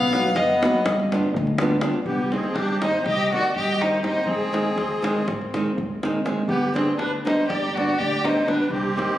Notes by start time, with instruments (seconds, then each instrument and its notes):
Already playing: upright bass B1, accordion B3, fiddle F5
0.13 nylon-string guitar F#3 B3 D#4 F#4, davul high
0.35 upright bass F#2, accordion B3, fiddle D#5, davul high
0.49 davul high
0.63 nylon-string guitar F#3 B3 D#4 F#4, davul high
0.75 davul high
0.86 upright bass G1, davul high, davul low
1.00 davul high
1.12 nylon-string guitar G3 B3 D4 F4, davul high
1.34 upright bass D2, davul low
1.47 davul high
1.58 nylon-string guitar G3 B3 D4 F4, davul high
1.71 davul high
1.81 nylon-string guitar G3 B3 D4 F4, davul high
1.93 davul high
2.05 upright bass C2, fiddle B3, accordion G4, davul low
2.19 davul high
2.32 nylon-string guitar D#3 G3 C4 D#4, fiddle C4, accordion G#4, davul high
2.44 davul high
2.54 upright bass G2, fiddle D4, accordion G4, davul high
2.69 davul high
2.81 nylon-string guitar D#3 G3 C4 D#4, fiddle D#4, accordion C5, davul high
2.94 davul high
3.06 upright bass C2, fiddle G4, accordion D#5, davul high, davul low
3.20 davul high
3.32 nylon-string guitar D#3 G3 C4 D#4, fiddle F#4, accordion D5, davul high
3.44 davul high
3.56 upright bass G2, fiddle G4, accordion D#5, davul low
3.81 nylon-string guitar D#3 G3 C4 D#4, fiddle D#4, accordion C5, davul high
4.03 nylon-string guitar D#3 G3 C4 D#4, fiddle D#4, accordion C5, davul high
4.26 upright bass G#1, fiddle C4, accordion G#4, davul low
4.41 davul high
4.52 nylon-string guitar D#3 G#3 C4 D#4, davul high
4.67 davul high
4.77 upright bass D#2, davul high
4.91 davul high
5.02 nylon-string guitar D#3 G#3 C4 D#4, davul high
5.17 davul high
5.28 upright bass G#1, davul high, davul low
5.41 davul high
5.54 nylon-string guitar D#3 G#3 C4 D#4, davul high
5.66 davul high
5.77 upright bass D#2, davul low
6.03 nylon-string guitar D#3 G#3 C4 D#4, davul high
6.25 nylon-string guitar D#3 G#3 C4 D#4, davul high
6.48 upright bass G1, fiddle B3, accordion G4, davul low
6.62 davul high
6.74 nylon-string guitar D3 G3 B3 D4, fiddle C4, accordion G#4, davul high
6.88 davul high
6.98 upright bass D2, fiddle D4, accordion B4, davul high
7.14 davul high
7.25 nylon-string guitar D3 G3 B3 D4, fiddle D#4, accordion C5, davul high
7.40 davul high
7.48 upright bass G1, fiddle G4, accordion D5, davul high, davul low
7.64 davul high
7.75 nylon-string guitar D3 G3 B3 D4, fiddle F#4, accordion D5, davul high
7.90 davul high
7.98 upright bass D2, fiddle G4, accordion D5, davul low
8.23 nylon-string guitar D3 G3 B3 D4, fiddle D#4, accordion C5, davul high
8.47 nylon-string guitar D3 G3 B3 D4, fiddle D4, accordion B4, davul high
8.70 upright bass C2, fiddle C4, accordion G4, davul low
8.85 davul high
8.96 nylon-string guitar D#3 G3 C4 D#4, davul high
9.10 davul high